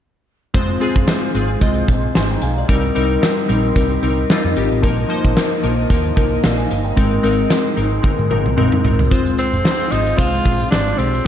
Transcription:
0.54 F1 G#3 C4 F4 G#4 C5, kick, closed hi-hat
0.80 G#3 C4 F4 G#4, closed hi-hat
0.96 F1, kick
1.08 G#3 C4 F4 C5, snare, closed hi-hat
1.34 G#1 G#3 C4 F4 G#4, closed hi-hat
1.61 C2 G#3 C4 F4 D#5, kick, closed hi-hat
1.88 A#1, kick, closed hi-hat
2.15 G#1 G#5 C6, snare, closed hi-hat
2.30 G5 A#5
2.42 B1 F5 G#5, closed hi-hat
2.58 D5 F5
2.68 C2 G3 C4 D#4 G4 A#4 D#5, kick, closed hi-hat
2.95 C2 G3 C4 D#4 A#4, closed hi-hat
3.21 G3 C4 D#4 A#4, snare, closed hi-hat
3.48 A#1 G3 C4 D#4 A#4, closed hi-hat
3.76 C2 G3 C4 D#4 A#4, kick, closed hi-hat
4.02 C2 G3 C4 D#4 A#4, closed hi-hat
4.30 G3 C4 D#4 F4, snare, closed hi-hat
4.45 F2
4.56 G#1 G3 C4 D#4 G4, closed hi-hat
4.72 A1
4.82 A#1 F3 A#3 D#4 F4 A#4, kick, closed hi-hat
5.09 F3 A#3 D#4 C5, closed hi-hat
5.25 A#1, kick
5.35 F3 A#3 D#4 A#4, snare, closed hi-hat
5.63 A#1 F3 A#3 D#4 A#4, closed hi-hat
5.89 D#2 F3 A#3 D#4 A#4, kick, closed hi-hat
6.16 C2 F3 A#3 D#4 A#4, kick, closed hi-hat
6.44 A#1 D5 F5, snare, closed hi-hat
6.58 F5 G#5
6.71 G1, closed hi-hat
6.84 G5 A#5
6.96 G#1 G#3 C4 D#4 G#4 A#4, kick, closed hi-hat
7.23 G#1 G#3 C4 D#4 A#4, closed hi-hat
7.49 G#3 C4 D#4 A#4, snare, closed hi-hat
7.76 G#1 G#3 C4 D#4 A#4, closed hi-hat
8.02 G#3 C4 D#4 A#4, kick, high tom
8.19 G#2, high tom
8.30 G#1 G#3 C4 D#4 A#4, mid tom
8.46 C2, mid tom
8.57 A#1 G#3 C4 D#4 A#4, mid tom
8.72 mid tom
8.84 G#1 G#3 C4 D#4 A#4, floor tom
8.99 C2, floor tom
9.11 F1 G#3 C4 F4 G#4 C5, kick, closed hi-hat
9.26 closed hi-hat
9.37 G#3 C4 F4 C5, closed hi-hat
9.53 F1, closed hi-hat
9.64 G#3 C4 F4 C5, snare
9.80 closed hi-hat
9.91 G#1 G#3 C4 D#4 F4 C5, closed hi-hat
10.07 closed hi-hat
10.17 C2 G#3 C4 F4 C5, kick, closed hi-hat
10.34 closed hi-hat
10.44 A#1 G#3 C4 F4 G#4, kick, closed hi-hat
10.60 closed hi-hat
10.71 G#1 G#3 C4 D4 F4 G#4, snare
10.87 closed hi-hat
10.98 B1 G#3 C4 F4 G4, closed hi-hat
11.14 closed hi-hat

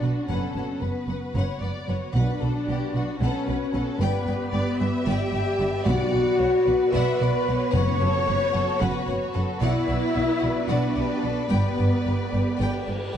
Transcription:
Already playing: B3 D4 F#4 B4 D5 F#5, sub drop
0.02 B1 B2 B4 F#5
0.26 F#1 F#2 C#4 A4 B4 C#5 F#5
0.54 F#1 F#2 B4 F#5
0.80 F#1 F#2 B3 B4 F#5
1.08 F#1 F#2 B4 F#5
1.34 F#1 F#2 B4 C#5 F#5
1.61 F#1 F#2 B4 D5 F#5
1.88 F#1 F#2 B4 C#5 F#5
2.13 B1 B2 D4 B4 D5 F#5
2.41 B1 B2 A4 B4 F#5
2.67 B1 B2 G4 B4 F#5
2.93 B1 B2 F#4 B4 F#5
3.20 B1 B2 C#4 A4 B4 C#5 F#5
3.47 B1 B2 B4 F#5
3.73 B1 B2 A4 B4 F#5
3.98 G1 G2 B3 G4 B4 D5 G5
4.03 B3
4.26 G1 G2 D5 G5
4.53 G1 G2 D5 G5
4.79 G1 G2 D5 E5 G5
5.06 G1 G2 G4 D5 G5
5.33 G1 G2 D5 G5
5.59 G1 G2 D5 G5
5.84 B1 B2 F#4 D5 F#5
6.13 B1 B2 D5 F#5
6.38 B1 B2 C#5 D5 F#5
6.66 B1 B2 B4 D5 F#5
6.92 B1 B2 B4 D5 E5 F#5 B5
7.20 B1 B2 D5 F#5
7.47 B1 B2 C#5 D5 F#5
7.71 F#1 F#2 B4 C#5 F#5 C#6
7.99 F#1 F#2 A4 B4 F#5
8.26 F#1 F#2 B4 F#5
8.52 F#1 F#2 A4 B4 F#5
8.80 F#1 F#2 F#4 B4 F#5
9.06 F#1 F#2 B4 C#5 F#5
9.33 F#1 F#2 A4 B4 F#5
9.60 B1 B2 B3 E4 B4 D5 E5 F#5
9.87 B1 B2 D5 F#5
10.13 B1 B2 D5 F#5
10.39 B1 B2 D5 F#5
10.68 B1 B2 D4 F#4 D5 F#5
10.95 B1 B2 G4 D5 F#5
11.21 B1 B2 A4 D5 F#5
11.49 G1 G2 B3 G4 B4 D5 G5, cymbal swell
11.77 G1 G2 D5 G5
12.05 G1 G2 D5 G5
12.32 G1 G2 D5 G5
12.59 G1 G2 D5 G5
12.86 G1 G2 D5 G5
13.13 D5 G5

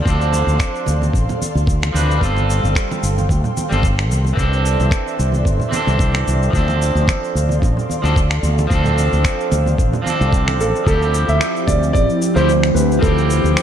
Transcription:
Already playing: A4 D5 F5 C6
0.02 D2 F3 C4, kick
0.07 D4 A4, cabasa
0.21 cabasa
0.33 muted conga, cabasa
0.47 D2, cabasa
0.60 finger snap, kick, cabasa
0.75 cabasa
0.86 D2, muted conga, cabasa
1.02 high conga, cabasa
1.14 A1, kick, cabasa
1.29 muted conga, low conga, cabasa
1.42 high conga, cabasa
1.55 D2, high conga, cabasa
1.67 kick, cabasa
1.83 finger snap, muted conga, cabasa
1.93 D2 F3 C4 D4 B4, high conga, cabasa
2.11 cabasa
2.18 G1 G3 C4, kick
2.22 F4 A4 G5, cabasa
2.36 muted conga, cabasa
2.50 cabasa
2.63 G1, cabasa
2.75 finger snap, kick, cabasa
2.91 muted conga, cabasa
3.03 G1, cabasa
3.18 high conga, cabasa
3.29 D2, kick, muted conga, cabasa
3.44 low conga, cabasa
3.57 high conga, cabasa
3.69 G1 G3 C4 F4 A4, high conga, cabasa
3.83 kick, muted conga, cabasa
3.99 finger snap, cabasa
4.10 C2 D5 E5 C6, high conga, cabasa
4.25 muted conga, cabasa
4.33 C2 E3 C4
4.37 D4 A4, kick, cabasa
4.53 cabasa
4.66 cabasa
4.80 C2, muted conga, cabasa
4.91 finger snap, kick, cabasa
5.08 cabasa
5.19 C2, muted conga, cabasa
5.32 high conga, cabasa
5.45 G1, kick, cabasa
5.60 low conga, cabasa
5.69 E3 C4, high conga
5.73 D4 A4, muted conga, cabasa
5.87 C2, high conga, cabasa
5.99 kick, cabasa
6.14 finger snap, muted conga, cabasa
6.27 C2, high conga, cabasa
6.43 cabasa
6.50 D2 F3 C4 A4 D5 F5, kick
6.55 D4 A4, cabasa
6.68 muted conga, cabasa
6.82 cabasa
6.95 D2, cabasa
7.08 finger snap, kick, muted conga, cabasa
7.24 cabasa
7.35 D2, cabasa
7.49 high conga, cabasa
7.62 A1, kick, muted conga, cabasa
7.77 low conga, cabasa
7.90 high conga, cabasa
8.02 D2 F3 C4 D4 A4, muted conga, high conga, cabasa
8.16 kick, cabasa
8.31 finger snap, cabasa
8.43 D2, high conga, cabasa
8.58 muted conga, cabasa
8.67 D2 F3 C4, kick, cabasa
8.72 D4 A4
8.84 low conga, cabasa
8.98 muted conga, cabasa
9.13 D2, cabasa
9.24 finger snap, kick, cabasa
9.40 cabasa
9.52 D2, muted conga, cabasa
9.66 high conga, cabasa
9.78 A1, kick, cabasa
9.93 muted conga, low conga, cabasa
10.02 F3 C4
10.06 D4 A4, high conga, cabasa
10.20 C2, high conga, cabasa
10.33 kick, cabasa
10.48 finger snap, muted conga, cabasa
10.59 A1 A4, high conga, cabasa
10.76 cabasa
10.84 D2 F3 C4 A4, kick, cabasa
10.88 F3 C4 E4 G4
11.02 cabasa
11.14 cabasa
11.28 D2 E5, cabasa
11.41 finger snap, cabasa
11.56 cabasa
11.67 D2 D5, kick, cabasa
11.83 cabasa
11.93 A1 D5, kick, cabasa
12.10 cabasa
12.22 cabasa
12.35 D2 F3 C4 E4 G4 C5, cabasa
12.49 cabasa
12.63 finger snap, cabasa
12.75 D2 B4, cabasa
12.92 cabasa
12.99 D2 F3 C4 A4, kick
13.04 D4 E4 G4, cabasa
13.18 cabasa
13.30 cabasa
13.44 D2, cabasa
13.57 finger snap, cabasa

